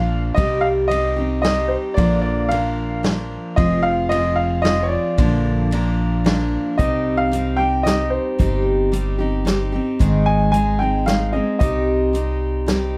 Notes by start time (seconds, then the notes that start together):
Already playing: A#1 F3 A#3 D4 A#4 F5
0.35 C2 C3 G3 C4 D#4 D#5, kick, ride
0.39 G4
0.61 F5
0.88 G3 C4 D#5, ride
0.92 D#4 G4
1.16 C4 D#4 G4
1.42 G3 C4 D#4 D#5, snare, ride
1.46 G4
1.68 C5
1.94 A#1 A#2 D3 F3 D5, kick, ride
1.98 A#3 D4 A#4
2.21 D5
2.49 F3 A#3 D4 F5, ride
2.53 A#4
3.03 F3 A#3 D4 A#4, snare, ride
3.56 F1 F3 C4 F4 G#4 D#5, kick, ride
3.83 F5
4.09 F3 C4 F4 D#5, ride
4.14 G#4
4.36 F5
4.62 F3 C4 D#5, snare, ride
4.66 F4 G#4
4.83 C#5
4.88 D5
5.18 A#1 A#2 D3 F3 A#3 D4 A#4, kick, ride
5.71 F3 A#3 D4 A#4, ride
6.25 F3 A#3 D4 A#4, snare, ride
6.78 C2 C3 G3 C4 D#4 G4 D#5, kick, closed hi-hat
7.17 F5
7.32 G3 C4 D#4 G4, closed hi-hat
7.57 D#4 G4 G5
7.62 C4
7.83 G3 C4 D#4 D#5, snare, closed hi-hat
7.88 G4
8.10 C5
8.39 G1 C3 G3 C4 D#4 G4, kick, closed hi-hat
8.92 G3 C4 D#4 G4, closed hi-hat
9.19 C4 D#4 G4
9.45 G3 C4 D#4 G4, snare, closed hi-hat
9.72 C4 D#4 G4
9.99 G#1 G#2 D#3 G#3 C4 D#4 G#4, kick, closed hi-hat
10.26 G#5
10.52 G#3 C4 D#4 G#5, closed hi-hat
10.56 G#4
10.79 C4 D#4 G#4 G5
10.83 G#3
11.06 G#3 C4 D#4 G#4 F5, snare, closed hi-hat
11.33 G#3 C4 D#4 G#4 D#5
11.59 C2 C3 G3 C4 D#4 G4 D#5, kick, closed hi-hat
12.13 G3 C4 D#4 G4, closed hi-hat
12.66 G3 C4 D#4 G4, snare, closed hi-hat